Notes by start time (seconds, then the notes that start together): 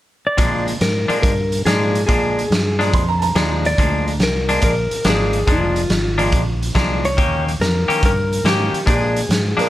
0.27 D5
0.37 A#2 F3 G#3 D4, kick, closed hi-hat
0.68 closed hi-hat
0.81 G#2 A#4, snare, closed hi-hat
1.08 A#2 F3 G#3 D4, muted fingered electric bass stroke, closed hi-hat
1.22 G2 A#4, kick, closed hi-hat
1.52 closed hi-hat
1.65 G#2 A#2 F3 G#3 D4 G#4, snare, closed hi-hat
1.95 closed hi-hat
2.07 A#2 F3 G#3 D4 G#4, kick, closed hi-hat
2.39 closed hi-hat
2.50 G2, snare, closed hi-hat
2.79 A#2 F3 G#3 D4, snare, closed hi-hat
2.94 F2 C6, kick, closed hi-hat
3.09 A#5
3.19 A5 A#5, closed hi-hat
3.35 D#2 A#2 F3 G#3 D4, snare, closed hi-hat
3.65 D5, closed hi-hat
3.78 D2 A#2 F3 G#3 D4, kick, closed hi-hat
4.08 closed hi-hat
4.20 C2 A#4, snare, closed hi-hat
4.49 A#2 F3 G#3 D4, closed hi-hat
4.62 A#1 A#4, kick, closed hi-hat
4.91 closed hi-hat
5.04 G#1 A#2 F3 G#3 D4, snare, closed hi-hat
5.10 G#4
5.33 closed hi-hat
5.47 F1 A#2 F3 G#3 D4, kick, closed hi-hat
5.52 F4
5.76 closed hi-hat
5.89 G#1, snare, closed hi-hat
6.18 A#2 F3 G#3 D4, closed hi-hat
6.32 A#1, kick, closed hi-hat
6.63 closed hi-hat
6.75 C2 A#2 F3 G#3 D4, kick, snare, closed hi-hat
7.05 C#5, closed hi-hat
7.17 D#2 D#3 A#3 C#4 G4, kick, closed hi-hat
7.48 closed hi-hat
7.60 F2 A#4, snare, closed hi-hat
7.88 D#3 A#3 C#4 G4, muted fingered electric bass stroke, closed hi-hat
8.03 G2 A#4, kick, closed hi-hat
8.33 closed hi-hat
8.44 G#2 D#3 A#3 C#4 G4, snare, closed hi-hat
8.73 muted fingered electric bass stroke, closed hi-hat
8.86 A#2 F3 G#3 D4 G#4, kick, closed hi-hat
9.16 closed hi-hat
9.29 G#2, snare, closed hi-hat
9.57 A#2 F3 G#3 D4 A#4, muted fingered electric bass stroke, snare, closed hi-hat